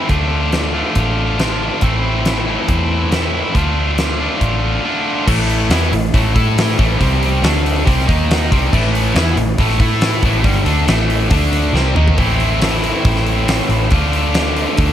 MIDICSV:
0, 0, Header, 1, 4, 480
1, 0, Start_track
1, 0, Key_signature, 0, "minor"
1, 0, Tempo, 431965
1, 112, Time_signature, 4, 2, 24, 8
1, 16587, End_track
2, 0, Start_track
2, 0, Title_t, "Distorted electric guitar"
2, 0, Program_c, 0, 30
2, 100, Note_on_c, 0, 50, 77
2, 114, Note_on_c, 0, 57, 83
2, 120, Note_on_c, 0, 62, 83
2, 122, Note_on_c, 0, 65, 81
2, 802, Note_off_c, 0, 65, 0
2, 812, Note_off_c, 0, 50, 0
2, 815, Note_off_c, 0, 62, 0
2, 815, Note_on_c, 0, 65, 81
2, 828, Note_off_c, 0, 57, 0
2, 828, Note_on_c, 0, 62, 68
2, 833, Note_on_c, 0, 57, 66
2, 838, Note_on_c, 0, 50, 62
2, 1525, Note_off_c, 0, 50, 0
2, 1529, Note_off_c, 0, 65, 0
2, 1536, Note_off_c, 0, 62, 0
2, 1538, Note_on_c, 0, 50, 70
2, 1540, Note_off_c, 0, 57, 0
2, 1544, Note_on_c, 0, 57, 62
2, 1554, Note_on_c, 0, 62, 73
2, 1565, Note_on_c, 0, 65, 77
2, 2009, Note_on_c, 0, 45, 72
2, 2011, Note_off_c, 0, 50, 0
2, 2019, Note_off_c, 0, 57, 0
2, 2019, Note_off_c, 0, 62, 0
2, 2023, Note_on_c, 0, 57, 91
2, 2024, Note_off_c, 0, 65, 0
2, 2025, Note_on_c, 0, 52, 75
2, 2031, Note_on_c, 0, 60, 88
2, 2040, Note_on_c, 0, 64, 78
2, 2726, Note_off_c, 0, 45, 0
2, 2726, Note_off_c, 0, 64, 0
2, 2734, Note_off_c, 0, 52, 0
2, 2737, Note_off_c, 0, 60, 0
2, 2739, Note_on_c, 0, 64, 77
2, 2749, Note_on_c, 0, 60, 75
2, 2750, Note_off_c, 0, 57, 0
2, 2754, Note_on_c, 0, 57, 66
2, 2764, Note_on_c, 0, 45, 69
2, 2767, Note_on_c, 0, 52, 72
2, 3440, Note_off_c, 0, 45, 0
2, 3451, Note_off_c, 0, 52, 0
2, 3451, Note_off_c, 0, 64, 0
2, 3453, Note_on_c, 0, 45, 70
2, 3456, Note_off_c, 0, 60, 0
2, 3464, Note_on_c, 0, 52, 80
2, 3466, Note_off_c, 0, 57, 0
2, 3471, Note_on_c, 0, 57, 69
2, 3479, Note_on_c, 0, 60, 65
2, 3481, Note_on_c, 0, 64, 88
2, 3928, Note_off_c, 0, 45, 0
2, 3933, Note_off_c, 0, 52, 0
2, 3941, Note_off_c, 0, 60, 0
2, 3942, Note_off_c, 0, 64, 0
2, 3944, Note_on_c, 0, 50, 75
2, 3951, Note_off_c, 0, 57, 0
2, 3956, Note_on_c, 0, 57, 87
2, 3961, Note_on_c, 0, 62, 84
2, 3967, Note_on_c, 0, 65, 88
2, 4652, Note_off_c, 0, 50, 0
2, 4654, Note_off_c, 0, 65, 0
2, 4658, Note_off_c, 0, 57, 0
2, 4658, Note_off_c, 0, 62, 0
2, 4667, Note_on_c, 0, 65, 89
2, 4671, Note_on_c, 0, 62, 75
2, 4680, Note_on_c, 0, 57, 77
2, 4685, Note_on_c, 0, 50, 65
2, 5363, Note_off_c, 0, 50, 0
2, 5372, Note_off_c, 0, 57, 0
2, 5373, Note_off_c, 0, 65, 0
2, 5375, Note_off_c, 0, 62, 0
2, 5376, Note_on_c, 0, 50, 76
2, 5385, Note_on_c, 0, 57, 69
2, 5396, Note_on_c, 0, 62, 80
2, 5400, Note_on_c, 0, 65, 82
2, 5847, Note_off_c, 0, 50, 0
2, 5851, Note_off_c, 0, 57, 0
2, 5856, Note_off_c, 0, 62, 0
2, 5856, Note_on_c, 0, 52, 90
2, 5859, Note_off_c, 0, 65, 0
2, 5859, Note_on_c, 0, 45, 95
2, 5869, Note_on_c, 0, 57, 116
2, 6333, Note_off_c, 0, 52, 0
2, 6335, Note_off_c, 0, 45, 0
2, 6339, Note_off_c, 0, 57, 0
2, 6345, Note_on_c, 0, 52, 100
2, 6348, Note_on_c, 0, 59, 96
2, 6353, Note_on_c, 0, 64, 108
2, 6577, Note_off_c, 0, 52, 0
2, 6579, Note_off_c, 0, 59, 0
2, 6581, Note_off_c, 0, 64, 0
2, 6584, Note_on_c, 0, 45, 69
2, 6593, Note_on_c, 0, 52, 69
2, 6775, Note_off_c, 0, 45, 0
2, 6780, Note_off_c, 0, 52, 0
2, 6820, Note_on_c, 0, 45, 98
2, 6821, Note_on_c, 0, 52, 96
2, 6827, Note_on_c, 0, 57, 99
2, 7036, Note_off_c, 0, 57, 0
2, 7045, Note_off_c, 0, 52, 0
2, 7050, Note_on_c, 0, 57, 95
2, 7053, Note_off_c, 0, 45, 0
2, 7058, Note_on_c, 0, 64, 96
2, 7065, Note_on_c, 0, 69, 103
2, 7527, Note_off_c, 0, 57, 0
2, 7528, Note_on_c, 0, 45, 85
2, 7531, Note_off_c, 0, 64, 0
2, 7535, Note_off_c, 0, 69, 0
2, 7537, Note_on_c, 0, 52, 99
2, 7542, Note_on_c, 0, 57, 102
2, 7753, Note_off_c, 0, 45, 0
2, 7757, Note_on_c, 0, 48, 101
2, 7762, Note_off_c, 0, 52, 0
2, 7765, Note_off_c, 0, 57, 0
2, 7766, Note_on_c, 0, 55, 102
2, 7769, Note_on_c, 0, 60, 118
2, 8239, Note_off_c, 0, 48, 0
2, 8243, Note_off_c, 0, 55, 0
2, 8245, Note_off_c, 0, 60, 0
2, 8255, Note_on_c, 0, 57, 99
2, 8258, Note_on_c, 0, 50, 90
2, 8262, Note_on_c, 0, 62, 109
2, 8719, Note_off_c, 0, 57, 0
2, 8721, Note_off_c, 0, 50, 0
2, 8723, Note_on_c, 0, 55, 117
2, 8724, Note_off_c, 0, 62, 0
2, 8725, Note_on_c, 0, 48, 105
2, 8729, Note_on_c, 0, 60, 107
2, 8960, Note_off_c, 0, 48, 0
2, 8961, Note_off_c, 0, 55, 0
2, 8964, Note_off_c, 0, 60, 0
2, 8964, Note_on_c, 0, 51, 91
2, 8969, Note_on_c, 0, 58, 85
2, 8974, Note_on_c, 0, 63, 112
2, 9441, Note_off_c, 0, 51, 0
2, 9443, Note_off_c, 0, 58, 0
2, 9446, Note_off_c, 0, 63, 0
2, 9458, Note_on_c, 0, 48, 111
2, 9466, Note_on_c, 0, 55, 97
2, 9469, Note_on_c, 0, 60, 106
2, 9688, Note_off_c, 0, 48, 0
2, 9692, Note_off_c, 0, 55, 0
2, 9694, Note_off_c, 0, 60, 0
2, 9697, Note_on_c, 0, 45, 97
2, 9705, Note_on_c, 0, 52, 113
2, 9713, Note_on_c, 0, 57, 98
2, 10151, Note_off_c, 0, 52, 0
2, 10160, Note_off_c, 0, 45, 0
2, 10165, Note_on_c, 0, 52, 97
2, 10171, Note_off_c, 0, 57, 0
2, 10172, Note_on_c, 0, 59, 96
2, 10175, Note_on_c, 0, 64, 100
2, 10401, Note_off_c, 0, 52, 0
2, 10405, Note_off_c, 0, 59, 0
2, 10406, Note_off_c, 0, 64, 0
2, 10429, Note_on_c, 0, 45, 69
2, 10430, Note_on_c, 0, 52, 77
2, 10612, Note_off_c, 0, 45, 0
2, 10613, Note_off_c, 0, 52, 0
2, 10661, Note_on_c, 0, 45, 104
2, 10664, Note_on_c, 0, 57, 103
2, 10665, Note_on_c, 0, 52, 93
2, 10884, Note_off_c, 0, 57, 0
2, 10889, Note_off_c, 0, 45, 0
2, 10891, Note_off_c, 0, 52, 0
2, 10897, Note_on_c, 0, 57, 105
2, 10907, Note_on_c, 0, 64, 90
2, 10910, Note_on_c, 0, 69, 101
2, 11367, Note_off_c, 0, 57, 0
2, 11372, Note_off_c, 0, 64, 0
2, 11373, Note_off_c, 0, 69, 0
2, 11382, Note_on_c, 0, 45, 100
2, 11385, Note_on_c, 0, 52, 102
2, 11389, Note_on_c, 0, 57, 119
2, 11590, Note_off_c, 0, 45, 0
2, 11595, Note_off_c, 0, 52, 0
2, 11595, Note_on_c, 0, 43, 102
2, 11595, Note_on_c, 0, 50, 100
2, 11600, Note_on_c, 0, 55, 106
2, 11613, Note_off_c, 0, 57, 0
2, 11828, Note_off_c, 0, 50, 0
2, 11831, Note_off_c, 0, 55, 0
2, 11835, Note_on_c, 0, 57, 110
2, 11837, Note_off_c, 0, 43, 0
2, 11841, Note_on_c, 0, 62, 99
2, 11842, Note_on_c, 0, 50, 90
2, 12073, Note_off_c, 0, 50, 0
2, 12077, Note_off_c, 0, 57, 0
2, 12077, Note_on_c, 0, 45, 99
2, 12080, Note_off_c, 0, 62, 0
2, 12090, Note_on_c, 0, 52, 106
2, 12092, Note_on_c, 0, 57, 97
2, 12551, Note_off_c, 0, 57, 0
2, 12554, Note_off_c, 0, 45, 0
2, 12559, Note_off_c, 0, 52, 0
2, 12559, Note_on_c, 0, 50, 91
2, 12564, Note_on_c, 0, 57, 100
2, 12567, Note_on_c, 0, 62, 120
2, 13040, Note_off_c, 0, 50, 0
2, 13043, Note_off_c, 0, 57, 0
2, 13045, Note_off_c, 0, 62, 0
2, 13047, Note_on_c, 0, 48, 92
2, 13050, Note_on_c, 0, 55, 106
2, 13057, Note_on_c, 0, 60, 109
2, 13271, Note_off_c, 0, 48, 0
2, 13275, Note_on_c, 0, 51, 104
2, 13282, Note_off_c, 0, 55, 0
2, 13286, Note_on_c, 0, 58, 101
2, 13287, Note_off_c, 0, 60, 0
2, 13291, Note_on_c, 0, 63, 108
2, 13519, Note_off_c, 0, 51, 0
2, 13523, Note_on_c, 0, 45, 87
2, 13525, Note_off_c, 0, 58, 0
2, 13527, Note_off_c, 0, 63, 0
2, 13531, Note_on_c, 0, 52, 87
2, 13542, Note_on_c, 0, 57, 89
2, 13551, Note_on_c, 0, 60, 98
2, 13553, Note_on_c, 0, 64, 99
2, 15444, Note_off_c, 0, 45, 0
2, 15448, Note_off_c, 0, 52, 0
2, 15458, Note_off_c, 0, 60, 0
2, 15459, Note_off_c, 0, 64, 0
2, 15462, Note_on_c, 0, 50, 86
2, 15469, Note_off_c, 0, 57, 0
2, 15474, Note_on_c, 0, 57, 94
2, 15475, Note_on_c, 0, 62, 108
2, 15494, Note_on_c, 0, 65, 96
2, 16587, Note_off_c, 0, 50, 0
2, 16587, Note_off_c, 0, 57, 0
2, 16587, Note_off_c, 0, 62, 0
2, 16587, Note_off_c, 0, 65, 0
2, 16587, End_track
3, 0, Start_track
3, 0, Title_t, "Fingered electric bass"
3, 0, Program_c, 1, 33
3, 100, Note_on_c, 1, 38, 85
3, 916, Note_off_c, 1, 38, 0
3, 1061, Note_on_c, 1, 33, 78
3, 1876, Note_off_c, 1, 33, 0
3, 2028, Note_on_c, 1, 33, 89
3, 2840, Note_off_c, 1, 33, 0
3, 2983, Note_on_c, 1, 40, 85
3, 3797, Note_off_c, 1, 40, 0
3, 3939, Note_on_c, 1, 38, 91
3, 4753, Note_off_c, 1, 38, 0
3, 4899, Note_on_c, 1, 33, 89
3, 5308, Note_off_c, 1, 33, 0
3, 5861, Note_on_c, 1, 33, 105
3, 6309, Note_off_c, 1, 33, 0
3, 6329, Note_on_c, 1, 40, 91
3, 6559, Note_off_c, 1, 40, 0
3, 6576, Note_on_c, 1, 33, 85
3, 6802, Note_off_c, 1, 33, 0
3, 6826, Note_on_c, 1, 33, 95
3, 7047, Note_off_c, 1, 33, 0
3, 7065, Note_on_c, 1, 45, 100
3, 7508, Note_off_c, 1, 45, 0
3, 7549, Note_on_c, 1, 33, 102
3, 7767, Note_off_c, 1, 33, 0
3, 7785, Note_on_c, 1, 36, 104
3, 8227, Note_off_c, 1, 36, 0
3, 8248, Note_on_c, 1, 38, 98
3, 8697, Note_off_c, 1, 38, 0
3, 8739, Note_on_c, 1, 36, 89
3, 8960, Note_off_c, 1, 36, 0
3, 8989, Note_on_c, 1, 39, 98
3, 9428, Note_off_c, 1, 39, 0
3, 9461, Note_on_c, 1, 36, 93
3, 9680, Note_off_c, 1, 36, 0
3, 9696, Note_on_c, 1, 33, 99
3, 10140, Note_off_c, 1, 33, 0
3, 10166, Note_on_c, 1, 40, 104
3, 10392, Note_off_c, 1, 40, 0
3, 10400, Note_on_c, 1, 33, 85
3, 10629, Note_off_c, 1, 33, 0
3, 10647, Note_on_c, 1, 33, 98
3, 10872, Note_off_c, 1, 33, 0
3, 10880, Note_on_c, 1, 45, 96
3, 11332, Note_off_c, 1, 45, 0
3, 11363, Note_on_c, 1, 33, 83
3, 11590, Note_off_c, 1, 33, 0
3, 11602, Note_on_c, 1, 31, 103
3, 11830, Note_off_c, 1, 31, 0
3, 11836, Note_on_c, 1, 38, 98
3, 12067, Note_off_c, 1, 38, 0
3, 12083, Note_on_c, 1, 33, 94
3, 12535, Note_off_c, 1, 33, 0
3, 12568, Note_on_c, 1, 38, 82
3, 13018, Note_off_c, 1, 38, 0
3, 13032, Note_on_c, 1, 36, 86
3, 13266, Note_off_c, 1, 36, 0
3, 13281, Note_on_c, 1, 39, 87
3, 13512, Note_off_c, 1, 39, 0
3, 13533, Note_on_c, 1, 33, 97
3, 14348, Note_off_c, 1, 33, 0
3, 14494, Note_on_c, 1, 33, 90
3, 15108, Note_off_c, 1, 33, 0
3, 15211, Note_on_c, 1, 33, 83
3, 15420, Note_off_c, 1, 33, 0
3, 15457, Note_on_c, 1, 38, 90
3, 16275, Note_off_c, 1, 38, 0
3, 16428, Note_on_c, 1, 38, 92
3, 16587, Note_off_c, 1, 38, 0
3, 16587, End_track
4, 0, Start_track
4, 0, Title_t, "Drums"
4, 102, Note_on_c, 9, 42, 50
4, 106, Note_on_c, 9, 36, 81
4, 213, Note_off_c, 9, 42, 0
4, 217, Note_off_c, 9, 36, 0
4, 583, Note_on_c, 9, 42, 54
4, 590, Note_on_c, 9, 38, 92
4, 694, Note_off_c, 9, 42, 0
4, 701, Note_off_c, 9, 38, 0
4, 1060, Note_on_c, 9, 42, 60
4, 1066, Note_on_c, 9, 36, 92
4, 1171, Note_off_c, 9, 42, 0
4, 1177, Note_off_c, 9, 36, 0
4, 1549, Note_on_c, 9, 42, 54
4, 1556, Note_on_c, 9, 38, 100
4, 1661, Note_off_c, 9, 42, 0
4, 1667, Note_off_c, 9, 38, 0
4, 2014, Note_on_c, 9, 42, 57
4, 2025, Note_on_c, 9, 36, 86
4, 2125, Note_off_c, 9, 42, 0
4, 2136, Note_off_c, 9, 36, 0
4, 2505, Note_on_c, 9, 42, 58
4, 2512, Note_on_c, 9, 38, 98
4, 2616, Note_off_c, 9, 42, 0
4, 2623, Note_off_c, 9, 38, 0
4, 2983, Note_on_c, 9, 42, 62
4, 2985, Note_on_c, 9, 36, 109
4, 3094, Note_off_c, 9, 42, 0
4, 3096, Note_off_c, 9, 36, 0
4, 3465, Note_on_c, 9, 42, 58
4, 3472, Note_on_c, 9, 38, 104
4, 3577, Note_off_c, 9, 42, 0
4, 3583, Note_off_c, 9, 38, 0
4, 3944, Note_on_c, 9, 36, 96
4, 3953, Note_on_c, 9, 42, 51
4, 4055, Note_off_c, 9, 36, 0
4, 4064, Note_off_c, 9, 42, 0
4, 4423, Note_on_c, 9, 42, 56
4, 4430, Note_on_c, 9, 38, 96
4, 4534, Note_off_c, 9, 42, 0
4, 4541, Note_off_c, 9, 38, 0
4, 4902, Note_on_c, 9, 36, 98
4, 4905, Note_on_c, 9, 42, 55
4, 5014, Note_off_c, 9, 36, 0
4, 5016, Note_off_c, 9, 42, 0
4, 5863, Note_on_c, 9, 36, 102
4, 5865, Note_on_c, 9, 49, 111
4, 5974, Note_off_c, 9, 36, 0
4, 5977, Note_off_c, 9, 49, 0
4, 6107, Note_on_c, 9, 46, 59
4, 6218, Note_off_c, 9, 46, 0
4, 6340, Note_on_c, 9, 46, 80
4, 6347, Note_on_c, 9, 38, 112
4, 6451, Note_off_c, 9, 46, 0
4, 6458, Note_off_c, 9, 38, 0
4, 6589, Note_on_c, 9, 46, 67
4, 6700, Note_off_c, 9, 46, 0
4, 6824, Note_on_c, 9, 36, 105
4, 6835, Note_on_c, 9, 46, 87
4, 6935, Note_off_c, 9, 36, 0
4, 6946, Note_off_c, 9, 46, 0
4, 7065, Note_on_c, 9, 36, 107
4, 7068, Note_on_c, 9, 46, 62
4, 7176, Note_off_c, 9, 36, 0
4, 7179, Note_off_c, 9, 46, 0
4, 7312, Note_on_c, 9, 46, 76
4, 7319, Note_on_c, 9, 38, 121
4, 7423, Note_off_c, 9, 46, 0
4, 7430, Note_off_c, 9, 38, 0
4, 7545, Note_on_c, 9, 36, 106
4, 7548, Note_on_c, 9, 46, 64
4, 7656, Note_off_c, 9, 36, 0
4, 7659, Note_off_c, 9, 46, 0
4, 7786, Note_on_c, 9, 36, 103
4, 7790, Note_on_c, 9, 46, 79
4, 7897, Note_off_c, 9, 36, 0
4, 7901, Note_off_c, 9, 46, 0
4, 8031, Note_on_c, 9, 46, 61
4, 8142, Note_off_c, 9, 46, 0
4, 8267, Note_on_c, 9, 46, 81
4, 8274, Note_on_c, 9, 38, 114
4, 8378, Note_off_c, 9, 46, 0
4, 8385, Note_off_c, 9, 38, 0
4, 8408, Note_on_c, 9, 38, 40
4, 8513, Note_on_c, 9, 46, 65
4, 8519, Note_off_c, 9, 38, 0
4, 8624, Note_off_c, 9, 46, 0
4, 8747, Note_on_c, 9, 36, 107
4, 8751, Note_on_c, 9, 46, 88
4, 8858, Note_off_c, 9, 36, 0
4, 8862, Note_off_c, 9, 46, 0
4, 8882, Note_on_c, 9, 38, 31
4, 8988, Note_on_c, 9, 36, 114
4, 8993, Note_off_c, 9, 38, 0
4, 9002, Note_on_c, 9, 46, 66
4, 9099, Note_off_c, 9, 36, 0
4, 9113, Note_off_c, 9, 46, 0
4, 9232, Note_on_c, 9, 46, 88
4, 9239, Note_on_c, 9, 38, 115
4, 9343, Note_off_c, 9, 46, 0
4, 9350, Note_off_c, 9, 38, 0
4, 9468, Note_on_c, 9, 36, 108
4, 9478, Note_on_c, 9, 46, 73
4, 9579, Note_off_c, 9, 36, 0
4, 9589, Note_off_c, 9, 46, 0
4, 9702, Note_on_c, 9, 36, 107
4, 9710, Note_on_c, 9, 49, 95
4, 9813, Note_off_c, 9, 36, 0
4, 9821, Note_off_c, 9, 49, 0
4, 9947, Note_on_c, 9, 46, 68
4, 10058, Note_off_c, 9, 46, 0
4, 10176, Note_on_c, 9, 46, 83
4, 10182, Note_on_c, 9, 38, 120
4, 10287, Note_off_c, 9, 46, 0
4, 10294, Note_off_c, 9, 38, 0
4, 10414, Note_on_c, 9, 46, 64
4, 10525, Note_off_c, 9, 46, 0
4, 10649, Note_on_c, 9, 46, 83
4, 10651, Note_on_c, 9, 36, 109
4, 10760, Note_off_c, 9, 46, 0
4, 10762, Note_off_c, 9, 36, 0
4, 10773, Note_on_c, 9, 38, 34
4, 10884, Note_off_c, 9, 38, 0
4, 10888, Note_on_c, 9, 36, 101
4, 10890, Note_on_c, 9, 46, 68
4, 10999, Note_off_c, 9, 36, 0
4, 11001, Note_off_c, 9, 46, 0
4, 11128, Note_on_c, 9, 46, 76
4, 11134, Note_on_c, 9, 38, 122
4, 11239, Note_off_c, 9, 46, 0
4, 11245, Note_off_c, 9, 38, 0
4, 11363, Note_on_c, 9, 46, 61
4, 11365, Note_on_c, 9, 36, 111
4, 11474, Note_off_c, 9, 46, 0
4, 11476, Note_off_c, 9, 36, 0
4, 11604, Note_on_c, 9, 36, 108
4, 11604, Note_on_c, 9, 46, 81
4, 11715, Note_off_c, 9, 36, 0
4, 11715, Note_off_c, 9, 46, 0
4, 11846, Note_on_c, 9, 46, 62
4, 11957, Note_off_c, 9, 46, 0
4, 12090, Note_on_c, 9, 46, 78
4, 12097, Note_on_c, 9, 38, 110
4, 12201, Note_off_c, 9, 46, 0
4, 12208, Note_off_c, 9, 38, 0
4, 12333, Note_on_c, 9, 46, 68
4, 12444, Note_off_c, 9, 46, 0
4, 12563, Note_on_c, 9, 46, 97
4, 12567, Note_on_c, 9, 36, 114
4, 12674, Note_off_c, 9, 46, 0
4, 12678, Note_off_c, 9, 36, 0
4, 12808, Note_on_c, 9, 46, 69
4, 12919, Note_off_c, 9, 46, 0
4, 13062, Note_on_c, 9, 38, 69
4, 13173, Note_off_c, 9, 38, 0
4, 13291, Note_on_c, 9, 45, 97
4, 13402, Note_off_c, 9, 45, 0
4, 13419, Note_on_c, 9, 43, 86
4, 13530, Note_off_c, 9, 43, 0
4, 13533, Note_on_c, 9, 46, 77
4, 13535, Note_on_c, 9, 36, 101
4, 13644, Note_off_c, 9, 46, 0
4, 13646, Note_off_c, 9, 36, 0
4, 13778, Note_on_c, 9, 46, 60
4, 13889, Note_off_c, 9, 46, 0
4, 14019, Note_on_c, 9, 46, 87
4, 14026, Note_on_c, 9, 38, 104
4, 14131, Note_off_c, 9, 46, 0
4, 14137, Note_off_c, 9, 38, 0
4, 14263, Note_on_c, 9, 46, 60
4, 14374, Note_off_c, 9, 46, 0
4, 14499, Note_on_c, 9, 46, 85
4, 14502, Note_on_c, 9, 36, 117
4, 14610, Note_off_c, 9, 46, 0
4, 14613, Note_off_c, 9, 36, 0
4, 14624, Note_on_c, 9, 38, 33
4, 14735, Note_off_c, 9, 38, 0
4, 14741, Note_on_c, 9, 46, 63
4, 14852, Note_off_c, 9, 46, 0
4, 14983, Note_on_c, 9, 46, 92
4, 14989, Note_on_c, 9, 38, 123
4, 15094, Note_off_c, 9, 46, 0
4, 15100, Note_off_c, 9, 38, 0
4, 15219, Note_on_c, 9, 46, 58
4, 15330, Note_off_c, 9, 46, 0
4, 15452, Note_on_c, 9, 46, 75
4, 15466, Note_on_c, 9, 36, 117
4, 15563, Note_off_c, 9, 46, 0
4, 15577, Note_off_c, 9, 36, 0
4, 15703, Note_on_c, 9, 46, 68
4, 15814, Note_off_c, 9, 46, 0
4, 15940, Note_on_c, 9, 46, 82
4, 15947, Note_on_c, 9, 38, 117
4, 16051, Note_off_c, 9, 46, 0
4, 16058, Note_off_c, 9, 38, 0
4, 16185, Note_on_c, 9, 46, 63
4, 16296, Note_off_c, 9, 46, 0
4, 16417, Note_on_c, 9, 46, 91
4, 16429, Note_on_c, 9, 36, 125
4, 16529, Note_off_c, 9, 46, 0
4, 16540, Note_off_c, 9, 36, 0
4, 16587, End_track
0, 0, End_of_file